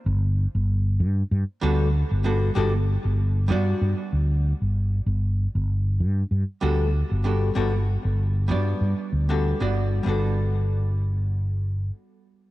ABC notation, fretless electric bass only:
X:1
M:4/4
L:1/16
Q:"Swing 16ths" 1/4=96
K:G
V:1 name="Fretless electric bass" clef=bass
G,,,2 z G,,,3 G,, z G,, z D,,2 z G,,,2 z | G,,,2 z G,,,3 G,, z G,, z D,,2 z G,,,2 z | G,,,2 z G,,,3 G,, z G,, z D,,2 z G,,,2 z | G,,,2 z G,,,3 G,, z G,, z D,,2 z G,,,2 z |
G,,,12 z4 |]